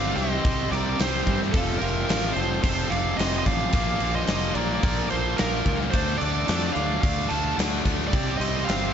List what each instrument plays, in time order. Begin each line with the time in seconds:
Already playing: fingered electric bass G1, distorted electric guitar C3 G3 C4, lead electric guitar D5 F5
0.16 fingered electric bass C2, distorted electric guitar C3 G3 C4, lead electric guitar C5 D#5, crash
0.45 fingered electric bass C2, distorted electric guitar C3 G3 C4, kick, crash
0.71 fingered electric bass C2, distorted electric guitar C3 G3 C4, lead electric guitar A#4 D5, crash
0.98 fingered electric bass C2, distorted electric guitar C3 G3 C4, lead electric guitar G4 C5, snare, crash
1.26 fingered electric bass G2, distorted electric guitar C3 G3 C4, kick, crash
1.42 snare
1.52 fingered electric bass F1, distorted electric guitar F2 C3 F3, lead electric guitar A4, kick, crash
1.57 lead electric guitar F4
1.78 fingered electric bass F1, distorted electric guitar F2 C3, lead electric guitar A#4, crash
1.82 distorted electric guitar F3, lead electric guitar F4
2.08 fingered electric bass A1, distorted electric guitar F2 C3 F3, snare, crash
2.33 fingered electric bass F1, lead electric guitar A4 C5, crash
2.38 distorted electric guitar F2 C3 F3
2.62 fingered electric bass F1, distorted electric guitar F2 C3 F3, lead electric guitar A4 C5, kick, crash
2.90 fingered electric bass F1, distorted electric guitar F2 C3 F3, lead electric guitar D5 F5, crash
3.17 fingered electric bass F1, distorted electric guitar F2 C3 F3, lead electric guitar D#5, snare, crash
3.21 lead electric guitar C5
3.38 lead electric guitar C5 D#5
3.46 fingered electric bass A1, distorted electric guitar F2 C3 F3, lead electric guitar D5 F5, kick, crash
3.73 fingered electric bass A#1, distorted electric guitar A#2 F3 A#3, kick, crash
4.00 fingered electric bass A#1, distorted electric guitar A#2 F3 A#3, crash
4.15 lead electric guitar C5 D#5
4.27 fingered electric bass F1, distorted electric guitar A#2 F3 A#3, snare, crash
4.55 fingered electric bass A#1, distorted electric guitar A#2 F3 A#3, lead electric guitar A#4 D5, crash
4.83 fingered electric bass A#1, distorted electric guitar A#2 F3 A#3, kick, crash
5.10 fingered electric bass A#1, distorted electric guitar A#2 F3 A#3, lead electric guitar A4 C5, crash
5.36 fingered electric bass A#1, distorted electric guitar A#2 F3 A#3, lead electric guitar A#4, snare, crash
5.41 lead electric guitar F4
5.66 fingered electric bass C#2, distorted electric guitar A#2 F3 A#3, kick, crash
5.81 snare
5.91 fingered electric bass D2, distorted electric guitar D3 A3 D4, lead electric guitar C5, kick, crash
5.95 lead electric guitar A4
6.18 fingered electric bass D2, distorted electric guitar D3 A3 D4, lead electric guitar A4 D5, crash
6.47 fingered electric bass F2, distorted electric guitar D3 A3 D4, snare, crash
6.73 fingered electric bass D2, distorted electric guitar D3 A3 D4, lead electric guitar D5 F5, crash
7.02 fingered electric bass D2, distorted electric guitar D3 A3 D4, lead electric guitar D5 F5, kick, crash
7.29 fingered electric bass D2, distorted electric guitar D3 A3 D4, lead electric guitar A5, crash
7.33 lead electric guitar F5
7.57 fingered electric bass D2, distorted electric guitar D3 A3 D4, snare, crash
7.84 fingered electric bass D2, distorted electric guitar D3 A3 D4, kick, crash
8.02 snare
8.07 distorted electric guitar C3, lead electric guitar D5
8.12 fingered electric bass C2, distorted electric guitar G3 C4, lead electric guitar G4, kick, crash
8.37 fingered electric bass C2, distorted electric guitar C3 G3 C4, lead electric guitar C5 D#5, crash
8.64 fingered electric bass G1, distorted electric guitar C3 G3 C4, lead electric guitar C5 F5
8.69 snare, crash